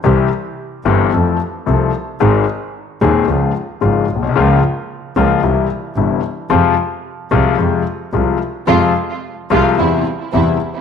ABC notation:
X:1
M:4/4
L:1/16
Q:1/4=111
K:Fm
V:1 name="String section"
z16 | z16 | z16 | z16 |
[A,CF]2 z4 [A,CF]2 [G,C=E]2 z2 [G,CE]2 z2 |]
V:2 name="Grand piano" clef=bass
[C,,C,=E,G,CG]2 z4 [G,,,G,,E,G,CG]2 [F,,F,=A,C=A]2 z2 [C,,C,F,A,CA]2 z2 | [A,,,A,,E,A,CA]2 z4 [E,,,E,,E,A,CA]2 [D,,D,F,A,F]2 z2 [A,,,A,,D,F,A,F]2 z/2 B,,,/2 =B,,,/2 C,,/2 | [D,,D,F,B,F]2 z4 [D,,D,F,B,F]2 [C,,C,=E,G,=E]2 z2 [G,,,G,,C,E,G,E]2 z2 | [F,,C,F,A,F]2 z4 [C,,C,F,A,F]2 [F,,C,F,A,F]2 z2 [C,,C,F,A,F]2 z2 |
[F,,C,F,A,F]2 z4 [C,,C,F,A,F]2 [=E,,C,=E,G,=E]2 z2 [E,,C,E,G,E]2 z2 |]
V:3 name="Double bass" clef=bass
C,,2 z4 G,,,2 F,,2 z2 C,,2 z2 | A,,,2 z4 E,,2 D,,2 z2 A,,,2 =B,,,2 | D,,2 z4 D,,2 C,,2 z2 G,,,2 z2 | F,,2 z4 C,,2 F,,2 z2 C,,2 z2 |
F,,2 z4 C,,2 =E,,2 z2 E,,2 z2 |]